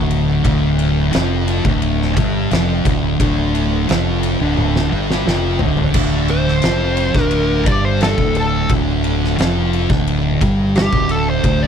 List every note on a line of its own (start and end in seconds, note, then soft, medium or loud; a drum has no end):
0.00 0.41 D1 loud
0.00 0.43 D2 loud
0.00 0.43 D3 loud
0.11 ride medium
0.44 1.10 D1 loud
0.44 1.12 D2 medium
0.44 1.12 D3 loud
0.44 kick loud
0.44 ride loud
0.79 ride medium
1.12 1.62 F1 medium
1.12 1.63 F2 medium
1.12 1.64 F3 loud
1.12 snare loud
1.12 ride loud
1.48 ride medium
1.65 2.13 D1 loud
1.65 2.16 D2 medium
1.65 2.16 D3 loud
1.65 kick loud
1.82 ride loud
2.02 snare soft
2.17 2.49 G1 medium
2.17 2.50 G2 loud
2.17 2.50 G3 loud
2.17 kick loud
2.17 ride medium
2.51 2.83 F1 medium
2.51 2.85 F2 medium
2.51 2.85 F3 loud
2.51 snare loud
2.51 ride loud
2.85 3.17 D1 loud
2.85 3.19 D2 medium
2.85 3.19 D3 loud
2.85 kick loud
2.85 ride medium
3.20 3.85 D1 loud
3.20 3.88 D2 loud
3.20 3.88 D3 loud
3.20 kick loud
3.20 ride loud
3.55 ride medium
3.88 4.37 F1 medium
3.88 4.39 F2 medium
3.88 4.39 F3 loud
3.88 snare loud
3.88 ride medium
4.23 ride medium
4.41 4.88 D1 medium
4.41 4.91 D2 medium
4.41 4.91 D3 medium
4.57 high tom medium
4.76 snare medium
4.92 5.24 G1 medium
4.92 5.25 G2 medium
4.92 5.26 G3 loud
5.11 snare medium
5.26 5.59 F1 medium
5.26 5.60 F2 medium
5.26 5.60 F3 loud
5.26 snare medium
5.59 5.93 D1 medium
5.59 5.94 D2 loud
5.59 5.95 D3 medium
5.59 floor tom loud
5.77 floor tom medium
5.94 6.59 D1 loud
5.94 6.63 D2 loud
5.94 6.63 D3 loud
5.94 kick loud
5.94 crash loud
6.28 7.22 C5 loud
6.28 ride medium
6.47 snare soft
6.62 7.12 F1 medium
6.62 7.15 F2 medium
6.62 7.15 F3 loud
6.62 snare loud
6.62 ride loud
6.97 ride medium
7.15 7.63 D1 medium
7.15 7.66 D2 medium
7.15 7.66 D3 medium
7.15 kick loud
7.15 snare soft
7.22 7.63 A#4 loud
7.31 ride loud
7.66 8.15 G1 medium
7.66 8.17 G2 medium
7.66 8.18 G3 loud
7.66 7.84 D5 medium
7.66 kick loud
7.66 ride medium
7.85 8.01 C5 medium
8.01 8.35 A4 medium
8.01 snare loud
8.01 ride loud
8.18 8.66 D1 medium
8.18 8.69 D2 loud
8.18 8.69 D3 loud
8.18 kick loud
8.35 8.69 A4 medium
8.35 ride medium
8.69 9.34 D1 loud
8.69 9.37 D2 medium
8.69 9.38 D3 loud
8.69 kick loud
8.69 ride loud
9.04 ride medium
9.24 snare soft
9.38 9.86 F1 loud
9.38 9.88 F2 medium
9.38 9.89 F3 loud
9.38 snare loud
9.38 ride medium
9.73 ride medium
9.90 10.38 D1 medium
9.90 10.40 D2 medium
9.90 10.41 D3 medium
9.90 kick loud
9.90 snare soft
10.07 ride loud
10.41 10.89 G1 medium
10.41 10.92 G2 medium
10.41 10.92 G3 loud
10.41 kick loud
10.41 ride medium
10.76 11.09 G4 loud
10.76 snare loud
10.76 ride loud
10.93 11.41 D1 loud
10.93 11.43 D2 loud
10.93 11.43 D3 loud
10.93 kick loud
11.09 11.29 A4 medium
11.09 ride medium
11.29 11.61 C5 medium
11.44 11.67 D1 loud
11.44 11.67 D2 loud
11.44 11.67 D3 loud
11.44 kick loud
11.44 ride loud
11.63 11.67 D5 medium